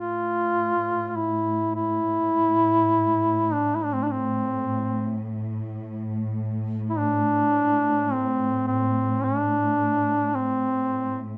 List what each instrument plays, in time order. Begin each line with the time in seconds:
Already playing: cello section A2, duduk F4
1.09 duduk F4
1.16 duduk E4
1.76 duduk E4
3.53 duduk D4
3.75 duduk E4
3.84 duduk D4
3.93 duduk C4
4.03 duduk D4
4.11 duduk C4
6.90 duduk E4
6.98 duduk D4
8.12 duduk C4
8.67 duduk C4
9.24 duduk D4
10.35 duduk C4